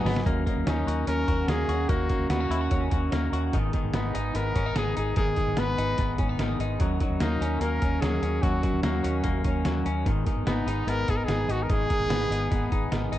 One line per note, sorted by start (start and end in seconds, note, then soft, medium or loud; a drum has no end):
0.00 2.54 F#3 medium
0.00 0.67 D#4 medium
0.00 0.30 G#4 medium
0.00 0.25 G#4 medium
0.00 0.25 B4 medium
0.00 0.25 F#5 medium
0.00 0.24 G#5 medium
0.00 0.25 D#6 medium
0.05 0.22 G#1 medium
0.05 0.25 F#3 soft
0.05 0.26 B3 soft
0.05 0.25 D#4 medium
0.05 snare medium
0.05 open hi-hat medium
0.17 snare medium
0.24 0.43 D#2 medium
0.24 0.46 D#3 medium
0.24 0.46 F#3 medium
0.24 0.45 A#3 medium
0.24 0.47 C#4 medium
0.24 0.46 D#4 medium
0.24 0.44 A#4 medium
0.24 kick loud
0.24 closed hi-hat medium
0.46 1.47 A#3 medium
0.46 0.65 C#4 soft
0.46 0.66 D#4 soft
0.46 0.67 A#4 soft
0.46 kick medium
0.46 closed hi-hat medium
0.57 0.65 D#2 medium
0.65 0.84 D#2 medium
0.65 0.86 F#3 medium
0.65 0.87 C#4 medium
0.65 0.86 D#4 medium
0.65 1.06 D#4 medium
0.65 0.84 A#4 medium
0.65 snare loud
0.65 closed hi-hat medium
0.86 1.04 D#2 medium
0.86 1.06 C#4 soft
0.86 1.07 D#4 soft
0.86 1.27 F#4 medium
0.86 1.07 A#4 medium
0.86 closed hi-hat medium
1.06 1.24 D#2 medium
1.06 1.28 D#3 medium
1.06 1.28 F#3 medium
1.06 1.28 C#4 medium
1.06 1.27 D#4 medium
1.06 1.50 A#4 medium
1.06 1.25 A#4 medium
1.06 closed hi-hat medium
1.26 1.45 D#2 medium
1.26 1.48 C#4 soft
1.26 1.49 D#4 soft
1.26 1.68 F#4 medium
1.26 1.48 A#4 soft
1.26 kick medium
1.26 closed hi-hat medium
1.47 1.65 D#2 medium
1.47 1.69 F#3 soft
1.47 1.88 A#3 soft
1.47 1.69 C#4 medium
1.47 1.69 D#4 medium
1.47 1.90 G#4 medium
1.47 snare loud
1.47 closed hi-hat medium
1.51 1.68 A#4 medium
1.68 1.85 D#2 medium
1.68 1.89 C#4 soft
1.68 1.89 D#4 soft
1.68 2.50 F#4 medium
1.68 1.89 A#4 soft
1.68 closed hi-hat medium
1.89 2.06 D#2 medium
1.89 2.10 D#3 medium
1.89 2.10 F#3 medium
1.89 2.09 A#3 medium
1.89 2.10 C#4 medium
1.89 2.09 D#4 medium
1.89 2.30 F#4 medium
1.89 2.08 A#4 medium
1.89 kick loud
1.89 closed hi-hat medium
2.09 3.11 A#3 soft
2.09 2.29 C#4 soft
2.09 2.30 D#4 soft
2.09 2.30 A#4 soft
2.09 kick medium
2.09 closed hi-hat medium
2.19 2.28 D#2 medium
2.29 2.47 D#2 medium
2.29 2.50 F#3 medium
2.29 2.41 B3 medium
2.29 2.51 C#4 medium
2.29 2.51 D#4 medium
2.29 2.88 F#4 medium
2.29 2.49 A#4 medium
2.29 snare loud
2.29 closed hi-hat medium
2.41 2.70 C#4 soft
2.50 2.67 D#2 medium
2.50 2.71 C#4 soft
2.50 2.71 D#4 soft
2.50 2.61 E4 medium
2.50 2.71 A#4 soft
2.50 closed hi-hat medium
2.61 2.91 F#4 soft
2.70 2.88 D#2 medium
2.70 2.91 D#3 medium
2.70 2.92 F#3 medium
2.70 2.92 C#4 medium
2.70 2.91 D#4 medium
2.70 2.89 A#4 medium
2.70 kick medium
2.70 closed hi-hat medium
2.91 3.09 D#2 medium
2.91 3.11 C#4 soft
2.91 3.11 D#4 medium
2.91 3.32 F#4 soft
2.91 3.12 A#4 soft
2.91 kick medium
2.91 closed hi-hat medium
3.10 3.29 D#2 medium
3.10 3.32 F#3 medium
3.10 3.57 A#3 medium
3.10 3.33 C#4 medium
3.10 3.31 D#4 medium
3.10 3.29 A#4 medium
3.10 snare medium
3.10 closed hi-hat medium
3.30 3.49 D#2 medium
3.30 3.53 C#4 soft
3.30 3.52 D#4 soft
3.30 3.57 F#4 medium
3.30 3.52 A#4 medium
3.30 closed hi-hat medium
3.51 3.70 G#1 medium
3.51 3.73 G#2 medium
3.51 3.73 D#3 medium
3.51 3.73 G#3 medium
3.51 3.73 B3 medium
3.51 3.72 D#4 medium
3.51 3.71 G#4 medium
3.51 kick medium
3.51 closed hi-hat medium
3.72 4.76 D#3 soft
3.72 3.92 G#3 soft
3.72 3.93 B3 soft
3.72 3.94 D#4 soft
3.72 3.93 G#4 medium
3.72 kick medium
3.72 closed hi-hat medium
3.84 3.92 G#1 medium
3.93 4.11 G#1 medium
3.93 4.14 G#3 medium
3.93 4.15 B3 medium
3.93 4.37 D#4 medium
3.93 4.14 D#4 medium
3.93 4.12 G#4 medium
3.93 snare loud
3.93 closed hi-hat medium
4.13 4.32 G#1 medium
4.13 4.33 G#3 soft
4.13 4.34 B3 soft
4.13 4.34 D#4 soft
4.13 4.34 G#4 medium
4.13 closed hi-hat medium
4.33 4.52 G#1 medium
4.33 4.55 G#2 medium
4.33 4.55 D#3 medium
4.33 4.55 G#3 medium
4.33 4.55 B3 medium
4.33 4.55 D#4 medium
4.33 4.53 G#4 medium
4.33 4.78 A#4 medium
4.33 closed hi-hat medium
4.54 4.72 G#1 medium
4.54 4.74 G#3 soft
4.54 4.75 B3 soft
4.54 4.66 C#4 medium
4.54 4.76 D#4 soft
4.54 4.75 G#4 soft
4.54 kick medium
4.54 closed hi-hat medium
4.66 4.96 D#4 medium
4.75 4.93 G#1 medium
4.75 5.17 D#3 medium
4.75 4.96 G#3 soft
4.75 4.96 B3 soft
4.75 4.96 D#4 medium
4.75 4.97 G#4 medium
4.75 4.94 G#4 medium
4.75 snare loud
4.75 closed hi-hat medium
4.96 5.14 G#1 medium
4.96 5.17 G#3 soft
4.96 5.17 B3 soft
4.96 5.17 D#4 soft
4.96 5.16 G#4 soft
4.96 5.16 G#4 medium
4.96 closed hi-hat medium
5.16 5.33 G#1 medium
5.16 5.37 G#2 medium
5.16 5.37 D#3 medium
5.16 5.38 G#3 medium
5.16 5.38 B3 medium
5.16 5.37 D#4 medium
5.16 5.60 G#4 medium
5.16 5.35 G#4 medium
5.16 kick loud
5.16 closed hi-hat medium
5.36 6.39 D#3 soft
5.36 5.56 G#3 soft
5.36 5.57 B3 soft
5.36 5.58 D#4 soft
5.36 5.57 G#4 soft
5.36 kick medium
5.36 closed hi-hat medium
5.47 5.55 G#1 medium
5.57 5.74 G#1 medium
5.57 5.78 G#3 medium
5.57 5.78 B3 medium
5.57 5.78 D#4 medium
5.57 5.76 G#4 medium
5.57 6.20 B4 medium
5.57 snare loud
5.57 closed hi-hat medium
5.77 5.95 G#1 medium
5.77 5.97 G#3 soft
5.77 5.98 B3 soft
5.77 5.98 D#4 soft
5.77 5.98 G#4 soft
5.77 closed hi-hat medium
5.97 6.15 G#1 medium
5.97 6.18 G#2 medium
5.97 6.19 D#3 medium
5.97 6.19 G#3 medium
5.97 6.19 B3 medium
5.97 6.18 D#4 medium
5.97 6.17 G#4 medium
5.97 kick medium
5.97 closed hi-hat medium
6.18 6.36 G#1 medium
6.18 6.36 G#3 soft
6.18 6.37 B3 soft
6.18 6.29 C#4 medium
6.18 6.39 D#4 medium
6.18 6.39 G#4 medium
6.18 kick medium
6.18 closed hi-hat medium
6.29 6.59 D#4 medium
6.38 6.56 G#1 medium
6.38 6.81 D#3 soft
6.38 6.59 G#3 medium
6.38 6.59 B3 medium
6.38 6.59 D#4 medium
6.38 6.57 G#4 medium
6.38 snare loud
6.38 closed hi-hat medium
6.59 6.76 G#1 medium
6.59 6.80 G#3 soft
6.59 6.81 B3 soft
6.59 6.80 D#4 soft
6.59 6.80 G#4 medium
6.59 closed hi-hat medium
6.79 6.97 D#2 medium
6.79 7.00 D#3 medium
6.79 7.01 F#3 medium
6.79 7.01 C#4 medium
6.79 7.01 D#4 medium
6.79 6.99 A#4 medium
6.79 kick loud
6.79 closed hi-hat medium
7.00 8.01 F#3 medium
7.00 7.20 C#4 soft
7.00 7.21 D#4 soft
7.00 7.21 A#4 soft
7.00 kick medium
7.00 closed hi-hat medium
7.10 7.19 D#2 medium
7.20 7.37 D#2 medium
7.20 7.41 F#3 medium
7.20 7.60 A#3 medium
7.20 7.41 C#4 soft
7.20 7.62 D#4 medium
7.20 7.42 D#4 medium
7.20 7.39 A#4 medium
7.20 snare loud
7.20 closed hi-hat medium
7.40 7.58 D#2 medium
7.40 7.61 C#4 soft
7.40 7.62 D#4 soft
7.40 7.61 A#4 soft
7.40 closed hi-hat medium
7.60 7.78 D#2 medium
7.60 7.81 D#3 medium
7.60 7.82 F#3 medium
7.60 8.82 A#3 medium
7.60 7.82 C#4 medium
7.60 7.81 D#4 medium
7.60 8.02 A#4 medium
7.60 7.80 A#4 medium
7.60 closed hi-hat medium
7.81 7.99 D#2 medium
7.81 8.01 C#4 soft
7.81 8.03 D#4 soft
7.81 8.02 A#4 soft
7.81 kick medium
7.81 closed hi-hat medium
8.01 8.19 D#2 medium
8.01 8.22 F#3 soft
8.01 8.23 C#4 soft
8.01 8.22 D#4 medium
8.01 8.44 G#4 medium
8.01 8.20 A#4 medium
8.01 snare loud
8.01 closed hi-hat medium
8.21 8.39 D#2 medium
8.21 8.42 C#4 soft
8.21 8.42 D#4 soft
8.21 8.42 A#4 soft
8.21 closed hi-hat medium
8.41 8.60 D#2 medium
8.41 8.63 D#3 medium
8.41 8.63 F#3 medium
8.41 8.63 C#4 medium
8.41 8.62 D#4 medium
8.41 8.83 F#4 medium
8.41 8.60 A#4 medium
8.41 kick loud
8.41 closed hi-hat medium
8.61 9.64 F#3 medium
8.61 8.82 C#4 soft
8.61 8.83 D#4 soft
8.61 8.83 A#4 soft
8.61 kick medium
8.61 closed hi-hat medium
8.73 8.82 D#2 medium
8.82 9.01 D#2 medium
8.82 9.04 F#3 soft
8.82 9.23 A#3 medium
8.82 9.04 C#4 medium
8.82 9.03 D#4 medium
8.82 9.41 F#4 medium
8.82 9.02 A#4 medium
8.82 snare loud
8.82 closed hi-hat medium
9.03 9.21 D#2 medium
9.03 9.24 C#4 soft
9.03 9.25 D#4 soft
9.03 9.24 A#4 soft
9.03 closed hi-hat medium
9.24 9.42 D#2 medium
9.24 9.45 D#3 medium
9.24 9.45 F#3 medium
9.24 10.10 A#3 medium
9.24 9.45 C#4 medium
9.24 9.45 D#4 medium
9.24 9.42 A#4 medium
9.24 kick medium
9.24 closed hi-hat medium
9.44 9.62 D#2 medium
9.44 9.64 C#4 soft
9.44 9.65 D#4 soft
9.44 9.65 A#4 medium
9.44 kick medium
9.44 closed hi-hat medium
9.64 9.83 D#2 medium
9.64 9.85 F#3 medium
9.64 9.86 C#4 medium
9.64 9.85 D#4 medium
9.64 9.83 A#4 medium
9.64 snare loud
9.64 closed hi-hat medium
9.84 10.03 D#2 medium
9.84 10.06 C#4 soft
9.84 10.06 D#4 soft
9.84 10.05 A#4 soft
9.84 closed hi-hat medium
10.05 10.23 G#1 medium
10.05 10.26 G#2 medium
10.05 10.26 D#3 medium
10.05 10.26 G#3 medium
10.05 10.26 B3 medium
10.05 10.25 D#4 medium
10.05 10.24 G#4 medium
10.05 kick loud
10.05 closed hi-hat medium
10.25 11.28 D#3 soft
10.25 10.44 G#3 soft
10.25 10.45 B3 soft
10.25 10.47 D#4 soft
10.25 10.46 G#4 soft
10.25 kick medium
10.25 closed hi-hat medium
10.37 10.45 G#1 medium
10.45 10.63 G#1 medium
10.45 10.67 G#3 medium
10.45 10.67 B3 medium
10.45 10.66 D#4 medium
10.45 10.91 D#4 medium
10.45 10.65 G#4 medium
10.45 snare loud
10.45 closed hi-hat medium
10.66 10.84 G#1 medium
10.66 10.86 G#3 soft
10.66 10.87 B3 soft
10.66 10.87 D#4 medium
10.66 10.87 G#4 medium
10.66 closed hi-hat medium
10.86 11.04 G#1 medium
10.86 11.08 G#2 medium
10.86 11.08 D#3 medium
10.86 11.08 G#3 medium
10.86 11.08 B3 medium
10.86 11.07 D#4 medium
10.86 11.06 G#4 medium
10.86 11.11 A#4 loud
10.86 closed hi-hat medium
11.07 11.25 G#1 medium
11.07 11.26 G#3 soft
11.07 11.27 B3 soft
11.07 11.28 D#4 soft
11.07 11.28 G#4 soft
11.07 11.18 G#4 loud
11.07 kick medium
11.07 closed hi-hat medium
11.16 11.26 A#4 medium
11.25 11.45 G#1 medium
11.25 11.69 D#3 soft
11.25 11.48 G#3 soft
11.25 11.48 B3 medium
11.25 11.53 G#4 medium
11.25 snare medium
11.25 closed hi-hat medium
11.29 11.47 D#4 medium
11.29 11.46 G#4 medium
11.48 11.66 G#1 medium
11.48 11.68 G#3 soft
11.48 11.69 B3 soft
11.48 11.69 D#4 soft
11.48 11.64 F#4 medium
11.48 11.69 G#4 soft
11.48 closed hi-hat medium
11.63 11.73 A#4 medium
11.68 11.86 G#1 medium
11.68 11.89 G#2 medium
11.68 11.89 D#3 medium
11.68 11.90 G#3 medium
11.68 11.89 B3 medium
11.68 11.88 D#4 medium
11.68 11.86 G#4 medium
11.68 12.92 G#4 loud
11.68 kick loud
11.68 closed hi-hat medium
11.87 12.91 D#3 soft
11.87 12.07 G#3 soft
11.87 12.08 B3 soft
11.87 12.09 D#4 soft
11.87 12.09 G#4 soft
11.87 kick medium
11.87 closed hi-hat medium
12.00 12.08 G#1 medium
12.08 12.26 G#1 medium
12.08 12.29 G#3 medium
12.08 12.30 B3 medium
12.08 12.29 D#4 medium
12.08 12.27 G#4 medium
12.08 snare loud
12.08 closed hi-hat medium
12.28 12.47 G#1 loud
12.28 12.49 G#3 soft
12.28 12.50 B3 medium
12.28 12.50 D#4 medium
12.28 12.50 G#4 medium
12.28 closed hi-hat medium
12.49 12.68 G#1 medium
12.49 12.70 G#2 medium
12.49 12.71 D#3 medium
12.49 12.71 G#3 medium
12.49 12.70 B3 medium
12.49 12.69 D#4 medium
12.49 12.68 G#4 medium
12.49 kick medium
12.49 closed hi-hat medium
12.69 12.88 G#1 medium
12.69 12.89 G#3 soft
12.69 12.90 B3 soft
12.69 12.91 D#4 medium
12.69 12.91 G#4 medium
12.69 kick medium
12.69 closed hi-hat medium
12.90 13.08 G#1 medium
12.90 13.19 D#3 soft
12.90 13.11 G#3 medium
12.90 13.12 B3 soft
12.90 13.11 D#4 medium
12.90 13.10 G#4 medium
12.90 snare loud
12.90 closed hi-hat medium
13.11 13.19 G#1 medium
13.11 13.19 G#3 soft
13.11 13.19 B3 soft
13.11 13.19 D#4 soft
13.11 13.19 G#4 medium
13.11 closed hi-hat medium